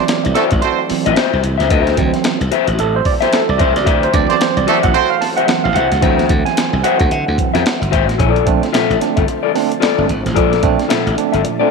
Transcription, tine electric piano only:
0.00 0.31 E3 medium
0.00 0.31 F#3 medium
0.00 0.32 C4 medium
0.00 1.29 D5 medium
0.89 1.14 E3 soft
0.89 1.14 F#3 soft
0.89 1.14 C4 medium
1.97 2.35 E3 medium
1.97 2.35 F#3 medium
1.97 2.36 C4 medium
2.80 2.94 A4 medium
2.96 3.07 C5 medium
3.06 3.13 D5 medium
3.23 3.34 C5 medium
3.34 3.50 A4 medium
3.50 3.61 D5 medium
3.61 3.77 C5 medium
3.77 4.04 D5 medium
4.04 4.15 C5 medium
4.14 4.91 E3 medium
4.14 4.91 F#3 medium
4.14 4.91 C4 medium
4.14 4.29 D5 loud
4.31 4.42 D5 medium
4.41 4.58 C5 medium
4.57 4.85 D5 medium
4.83 5.12 F#5 loud
5.10 5.22 F5 loud
5.21 5.29 A5 medium
5.37 5.65 F#5 loud
5.47 5.72 E3 medium
5.47 5.72 F#3 soft
5.47 5.72 C4 medium
5.64 5.76 F5 loud
5.74 6.48 F#5 loud
6.02 6.79 E3 medium
6.02 6.80 F#3 medium
6.02 6.80 C4 medium
6.45 6.85 G#5 medium
6.84 8.15 F#5 medium
7.38 7.62 E3 soft
7.38 7.63 F#3 soft
7.38 7.63 C4 medium
8.20 8.35 A#2 medium
8.20 8.35 F3 medium
8.46 8.62 A3 medium
8.46 8.62 C4 medium
8.46 8.62 D4 loud
8.63 8.67 C4 soft
8.63 8.67 D4 soft
8.74 8.90 A#2 medium
8.74 8.90 F3 medium
9.01 9.17 A3 medium
9.01 9.16 C4 medium
9.01 9.16 D4 medium
9.17 9.21 C4 soft
9.17 9.21 D4 soft
9.55 9.71 A3 medium
9.55 9.71 C4 medium
9.55 9.71 D4 medium
9.98 10.09 A3 medium
9.98 10.09 C4 medium
9.98 10.09 D4 medium
10.25 10.35 A#2 medium
10.25 10.35 F3 medium
10.37 10.52 A#2 medium
10.37 10.52 F3 medium
10.63 10.79 A3 loud
10.63 10.79 C4 medium
10.63 10.79 D4 loud
10.80 10.84 C4 soft
10.80 10.84 D4 soft
10.90 11.06 A#2 medium
10.90 11.06 F3 medium
11.18 11.34 A3 medium
11.18 11.33 C4 medium
11.18 11.33 D4 medium
11.34 11.38 C4 soft
11.34 11.38 D4 soft
11.45 11.61 A#2 medium
11.45 11.61 F3 medium
11.60 11.71 A3 medium
11.60 11.70 C4 medium
11.60 11.70 D4 medium

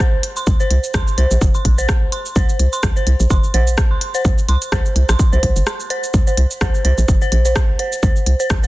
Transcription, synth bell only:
0.37 0.42 C6 medium
0.60 0.62 C5 medium
0.94 1.01 C6 medium
1.18 1.21 C5 medium
1.55 1.60 C6 medium
1.78 1.80 C5 medium
2.12 2.19 C6 medium
2.36 2.39 C5 medium
2.73 2.78 C6 medium
2.96 2.99 C5 medium
3.30 3.37 C6 medium
3.54 3.57 C5 medium
3.91 3.96 C6 medium
4.14 4.17 C5 medium
4.49 4.55 C6 medium
4.72 4.75 C5 medium
5.09 5.14 C6 medium
5.33 5.35 C5 medium
5.67 5.74 C6 medium
5.90 5.93 C5 medium
6.27 6.29 C5 medium
6.61 6.64 C5 medium
6.85 6.88 C5 medium
7.22 7.24 C5 medium
7.45 7.47 C5 medium
7.79 7.82 C5 medium
8.03 8.06 C5 medium
8.40 8.42 C5 medium
8.63 8.66 C5 medium

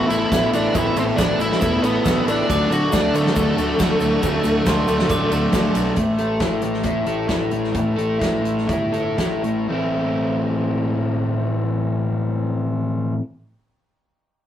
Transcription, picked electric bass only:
0.09 0.24 A1 medium
0.31 0.46 A1 medium
0.53 0.67 A1 medium
0.75 0.89 A1 medium
0.96 1.11 A1 loud
1.18 1.33 A1 medium
1.39 1.54 A1 medium
1.62 1.76 E1 medium
1.83 1.98 A1 medium
2.05 2.20 A1 loud
2.26 2.41 A1 loud
2.50 2.64 D2 loud
2.71 2.85 D3 medium
2.93 3.07 D2 medium
3.14 3.28 D3 medium
3.36 3.51 D2 loud
3.58 3.72 D2 loud
3.80 3.94 D2 medium
4.01 4.15 D2 medium
4.23 4.37 D2 medium
4.45 4.59 D2 medium
4.67 4.81 D2 medium
4.88 5.02 D2 medium
5.10 5.24 A1 medium
5.31 5.45 D2 medium
5.53 5.67 D2 medium
5.76 5.90 B1 medium
5.97 6.17 A1 medium
6.19 6.39 A1 medium
6.40 6.61 A1 medium
6.62 6.83 A1 medium
6.84 7.05 A1 medium
7.06 7.27 A1 medium
7.29 7.50 A1 medium
7.52 7.74 A1 medium
7.75 7.96 A1 medium
7.98 8.20 A1 medium
8.21 8.66 A1 medium
8.69 9.15 G1 medium
9.18 9.66 A1 medium
9.68 13.12 A1 medium

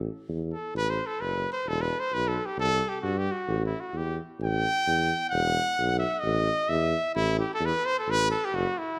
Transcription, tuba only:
0.29 0.54 E2 medium
0.74 0.99 A1 loud
1.20 1.45 F#1 medium
1.66 1.91 E1 loud
2.13 2.38 B1 loud
2.57 2.83 C2 loud
3.03 3.28 G2 loud
3.48 3.74 A1 loud
3.93 4.19 E2 medium
4.40 4.65 A1 loud
4.87 5.12 E2 loud
5.32 5.58 E1 loud
5.79 6.04 B1 loud
6.23 6.49 A1 loud
6.69 6.95 E2 loud
7.16 7.41 A1 loud
7.60 7.73 E2 loud
8.07 8.33 A1 loud
8.53 8.66 F#1 loud

